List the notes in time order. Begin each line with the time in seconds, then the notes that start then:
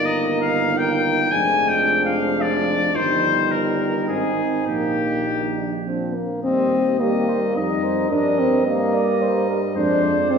Already playing: G1 D#3 A#3 D#4
0.05 D#5
0.41 F5
0.78 G5
1.31 F1 F3 G#3 D4 G#5
1.68 G5
2.05 F5
2.41 D5
2.95 G1 D#3 G3 D#4 C5
3.51 A#4
4.08 G#1 C4 G#4
4.67 A#1 A#3 G4
5.28 D#4
5.57 D4
5.85 F3 C4 D4
6.14 A#3
6.43 D#2 G3 C4 D#5
7.00 G3 A#3 G4 D#5
7.28 C5
7.56 F2 G3 D#4 A#4 D#5
7.84 C5
8.10 G2 G3 D4 A#4 D#5
8.39 C4
8.66 G3 A#3 D#5
8.94 D5
9.22 C5
9.49 A#4
9.76 F2 G#3 D4 C5
10.04 D5
10.30 G#3 C4 C5